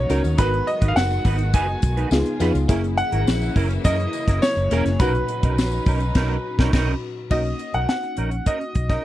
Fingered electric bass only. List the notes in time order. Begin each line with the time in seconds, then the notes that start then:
0.10 C#2
0.24 D#2
0.39 G#1
0.82 G#1
0.96 F#1
1.25 G#1
1.54 F#1
1.83 B1
2.11 C#2
2.40 F2
2.54 C#2
3.12 G#1
3.27 A#1
3.56 F#1
3.85 F#2
4.27 F#1
4.57 F#1
4.71 E1
4.86 F#1
5.00 B1
5.43 B1
5.58 A#1
5.86 B1
6.15 B1
6.59 B1
6.73 B1
7.31 B1
7.74 B1
8.18 A#1
8.75 B1